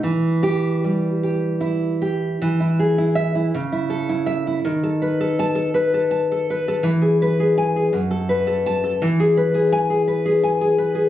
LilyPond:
\new Staff \with { instrumentName = "Nylon-string guitar" } { \time 6/8 \key e \minor \tempo 4. = 55 << { r8 g'4 r4. | \key e \major r4 e''8 r4 e''8 | r4 a''8 r4. | r4 gis''8 r4 a''8 |
r4 gis''8 r4. | } \\ { e4 g8 g'8 e'8 g'8 | e16 e'16 gis'16 e'8 e'16 cis16 e'16 a'16 e'8 e'16 | dis16 a'16 b'16 a'8 a'16 b'16 a'16 a''16 a'16 b'16 a'16 | e16 gis'16 b'16 gis'8 gis'16 fis,16 a'16 b'16 a'8 a'16 |
e16 gis'16 b'16 gis'8 gis'16 b'16 gis'16 gis''16 gis'16 b'16 gis'16 | } >> }